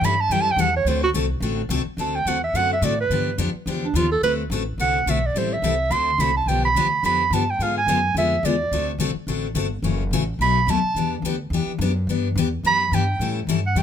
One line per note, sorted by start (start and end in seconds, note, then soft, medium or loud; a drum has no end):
0.01 0.29 G2 loud
0.01 0.13 E3 medium
0.01 0.13 G3 loud
0.01 0.14 C#4 medium
0.01 0.14 E4 loud
0.01 0.14 A4 medium
0.01 0.22 B5 loud
0.21 0.34 A5 loud
0.29 0.56 F#2 medium
0.29 0.49 E3 medium
0.29 0.49 G3 medium
0.29 0.49 C#4 medium
0.29 0.50 E4 medium
0.29 0.50 A4 medium
0.29 0.43 G5 loud
0.41 0.53 A5 loud
0.52 0.62 G5 loud
0.56 0.84 E2 loud
0.56 0.68 E3 medium
0.56 0.69 G3 medium
0.56 0.69 C#4 medium
0.56 0.69 E4 medium
0.56 0.69 A4 medium
0.61 0.75 F#5 loud
0.76 0.90 C#5 loud
0.85 1.13 D2 medium
0.85 1.05 D3 medium
0.85 1.05 A3 medium
0.85 1.05 C4 medium
0.85 1.05 F#4 medium
0.85 1.06 A4 medium
0.85 1.03 C5 medium
1.03 1.10 F#4 loud
1.13 1.40 C2 medium
1.13 1.25 D3 medium
1.13 1.25 A3 loud
1.13 1.25 C4 medium
1.13 1.25 F#4 medium
1.13 1.25 A4 loud
1.40 1.68 A1 medium
1.40 1.61 D3 medium
1.40 1.61 A3 medium
1.40 1.61 C4 medium
1.40 1.61 F#4 medium
1.40 1.61 A4 medium
1.69 1.84 C2 loud
1.69 1.80 D3 loud
1.69 1.81 A3 medium
1.69 1.81 C4 loud
1.69 1.81 F#4 loud
1.69 1.81 A4 loud
1.85 muted upright bass stroke soft
1.97 2.25 D2 medium
1.97 2.17 D3 medium
1.97 2.17 A3 medium
1.97 2.17 C4 medium
1.97 2.17 F#4 medium
1.97 2.18 A4 medium
1.97 2.17 A5 medium
2.16 2.29 G5 loud
2.25 2.53 E2 medium
2.25 2.37 D3 medium
2.25 2.37 A3 medium
2.25 2.37 C4 medium
2.25 2.37 F#4 medium
2.25 2.37 A4 medium
2.25 2.43 F#5 medium
2.44 2.58 E5 loud
2.53 2.81 F#2 medium
2.53 2.73 D3 medium
2.53 2.73 A3 medium
2.53 2.73 C4 medium
2.53 2.74 F#4 medium
2.53 2.74 A4 medium
2.53 2.72 F#5 loud
2.73 2.86 E5 medium
2.82 3.09 A2 loud
2.82 2.93 D3 medium
2.82 2.93 A3 medium
2.82 2.93 C4 loud
2.82 2.93 F#4 loud
2.82 2.93 A4 loud
2.82 2.99 D5 medium
3.01 3.37 B4 medium
3.10 3.37 G2 medium
3.10 3.29 D3 medium
3.10 3.29 F3 medium
3.10 3.30 B3 medium
3.10 3.30 D4 medium
3.10 3.30 G4 medium
3.38 3.53 F2 medium
3.38 3.49 D3 medium
3.38 3.49 F3 medium
3.38 3.49 B3 loud
3.38 3.49 D4 loud
3.38 3.49 G4 loud
3.54 muted upright bass stroke soft
3.66 3.93 E2 medium
3.66 3.85 D3 medium
3.66 3.85 F3 medium
3.66 3.86 B3 medium
3.66 3.86 D4 medium
3.66 3.86 G4 medium
3.85 3.98 D4 medium
3.94 4.21 D#2 loud
3.94 4.05 D3 medium
3.94 4.06 F3 loud
3.94 4.06 B3 medium
3.94 4.06 D4 loud
3.94 4.11 F4 medium
3.94 4.06 G4 medium
4.12 4.22 A4 loud
4.22 4.49 D2 medium
4.22 4.41 D3 medium
4.22 4.41 A3 medium
4.22 4.42 C4 medium
4.22 4.42 F#4 medium
4.22 4.42 A4 medium
4.22 4.33 B4 loud
4.50 4.77 A1 loud
4.50 4.61 D3 medium
4.50 4.62 A3 loud
4.50 4.62 C4 medium
4.50 4.62 F#4 medium
4.50 4.62 A4 medium
4.78 5.05 C2 medium
4.78 4.98 D3 medium
4.78 4.98 A3 medium
4.78 4.98 C4 medium
4.78 4.98 F#4 medium
4.78 4.98 A4 medium
4.78 5.11 F#5 loud
5.06 5.34 B1 medium
5.06 5.17 D3 medium
5.06 5.18 A3 medium
5.06 5.18 C4 medium
5.06 5.18 F#4 loud
5.06 5.18 A4 loud
5.06 5.28 E5 medium
5.26 5.40 D5 medium
5.34 5.62 A1 medium
5.34 5.54 E3 medium
5.34 5.54 G3 medium
5.34 5.54 C4 medium
5.34 5.54 E4 medium
5.34 5.54 A4 medium
5.38 5.55 C5 medium
5.53 5.93 E5 loud
5.62 5.89 C2 medium
5.62 5.73 E3 medium
5.62 5.74 G3 medium
5.62 5.74 C4 medium
5.62 5.74 E4 medium
5.62 5.74 A4 loud
5.90 6.18 D2 medium
5.90 6.09 D3 medium
5.90 6.10 A3 medium
5.90 6.10 C4 medium
5.90 6.10 F#4 medium
5.90 6.10 A4 medium
5.90 6.22 C6 loud
6.18 6.45 C2 loud
6.18 6.30 D3 medium
6.18 6.30 A3 medium
6.18 6.30 C4 medium
6.18 6.30 F#4 medium
6.18 6.30 A4 medium
6.18 6.36 B5 loud
6.37 6.50 A5 loud
6.46 6.74 B1 medium
6.46 6.66 D3 medium
6.46 6.66 F3 medium
6.46 6.66 B3 medium
6.46 6.67 D4 medium
6.46 6.67 G4 medium
6.46 6.64 G5 loud
6.65 7.01 B5 loud
6.75 7.02 D2 medium
6.75 6.86 D3 medium
6.75 6.86 F3 medium
6.75 6.86 B3 medium
6.75 6.86 D4 loud
6.75 6.87 G4 medium
7.03 7.30 F2 medium
7.03 7.22 D3 medium
7.03 7.22 F3 medium
7.03 7.22 B3 medium
7.03 7.23 D4 medium
7.03 7.23 G4 medium
7.03 7.35 B5 medium
7.31 7.58 G2 loud
7.31 7.42 D3 medium
7.31 7.42 F3 medium
7.31 7.42 B3 medium
7.31 7.42 D4 medium
7.31 7.43 G4 medium
7.31 7.52 A5 medium
7.50 7.64 G5 medium
7.59 7.86 G#2 medium
7.59 7.78 D3 medium
7.59 7.78 G#3 medium
7.59 7.78 B3 medium
7.59 7.79 F4 medium
7.59 7.79 G#4 medium
7.59 7.77 F5 medium
7.78 8.14 G#5 loud
7.86 8.14 F#2 medium
7.86 7.98 D3 medium
7.86 7.98 G#3 loud
7.86 7.98 B3 loud
7.86 7.98 F4 loud
7.86 7.99 G#4 medium
8.15 8.42 F2 medium
8.15 8.34 D3 medium
8.15 8.35 G#3 medium
8.15 8.35 B3 medium
8.15 8.35 F4 medium
8.15 8.35 G#4 medium
8.15 8.47 E5 loud
8.43 8.70 E2 loud
8.43 8.54 D3 medium
8.43 8.54 G#3 medium
8.43 8.55 B3 medium
8.43 8.55 F4 loud
8.43 8.55 G#4 medium
8.43 8.88 D5 medium
8.71 8.98 D2 medium
8.71 8.90 D3 medium
8.71 8.90 A3 medium
8.71 8.91 C4 medium
8.71 8.91 F#4 medium
8.71 8.91 A4 medium
8.98 9.14 C2 medium
8.98 9.10 D3 medium
8.98 9.10 A3 medium
8.98 9.10 C4 medium
8.98 9.10 F#4 loud
8.98 9.10 A4 loud
9.15 muted upright bass stroke soft
9.27 9.54 A1 medium
9.27 9.46 D3 medium
9.27 9.46 A3 medium
9.27 9.46 C4 medium
9.27 9.47 F#4 medium
9.27 9.47 A4 medium
9.55 9.82 G1 medium
9.55 9.65 D3 medium
9.55 9.66 A3 medium
9.55 9.66 C4 medium
9.55 9.66 F#4 loud
9.55 9.66 A4 loud
9.82 10.10 F#1 medium
9.82 10.02 C#3 medium
9.82 10.02 E3 medium
9.82 10.02 A3 medium
9.82 10.02 C#4 medium
9.82 10.03 F#4 medium
10.11 10.38 A1 medium
10.11 10.22 C#3 medium
10.11 10.23 E3 medium
10.11 10.23 A3 medium
10.11 10.23 C#4 loud
10.11 10.23 F#4 loud
10.39 10.66 B1 medium
10.39 10.59 B2 medium
10.39 10.59 F#3 medium
10.39 10.59 A3 medium
10.39 10.59 D#4 medium
10.39 10.59 F#4 medium
10.39 10.72 B5 loud
10.67 10.82 D#2 loud
10.67 10.78 B2 medium
10.67 10.78 F#3 medium
10.67 10.78 A3 medium
10.67 10.79 D#4 medium
10.67 10.79 F#4 medium
10.67 11.13 A5 loud
10.83 muted upright bass stroke soft
10.95 11.21 E2 medium
10.95 11.15 E3 medium
10.95 11.15 B3 medium
10.95 11.15 D4 medium
10.95 11.15 G4 medium
11.22 11.50 D2 medium
11.22 11.35 E3 medium
11.22 11.35 B3 loud
11.22 11.35 D4 medium
11.22 11.35 G4 loud
11.50 11.66 E2 medium
11.50 11.71 E3 medium
11.50 11.71 B3 medium
11.54 11.71 D4 medium
11.54 11.72 G4 medium
11.66 muted upright bass stroke soft
11.79 12.06 F#2 loud
11.79 11.91 E3 medium
11.79 11.91 B3 medium
11.79 11.91 D4 loud
11.79 11.91 G4 medium
12.07 12.35 G2 medium
12.07 12.27 E3 medium
12.07 12.27 B3 medium
12.07 12.27 D4 medium
12.07 12.28 G4 medium
12.36 12.63 E2 loud
12.36 12.47 E3 loud
12.36 12.47 B3 medium
12.36 12.47 D4 medium
12.36 12.48 G4 loud
12.63 12.91 F#2 medium
12.63 12.83 E3 medium
12.63 12.83 B3 medium
12.63 12.83 D4 medium
12.63 12.83 G4 medium
12.63 12.96 B5 loud
12.92 13.19 G2 loud
12.92 13.03 E3 medium
12.92 13.03 B3 medium
12.92 13.03 D4 medium
12.92 13.03 G4 medium
12.92 13.37 G5 loud
13.19 13.46 A2 medium
13.19 13.39 E3 medium
13.19 13.39 G3 medium
13.19 13.39 C#4 medium
13.19 13.39 E4 medium
13.19 13.39 A4 medium
13.47 13.75 G2 medium
13.47 13.59 E3 medium
13.47 13.59 G3 medium
13.47 13.59 C#4 loud
13.47 13.59 E4 loud
13.47 13.59 A4 loud
13.67 13.80 F#5 medium
13.75 13.83 E2 loud
13.75 13.83 E3 medium
13.75 13.83 G3 medium
13.75 13.83 C#4 medium
13.75 13.83 E4 medium
13.75 13.83 A4 medium
13.75 13.83 G5 loud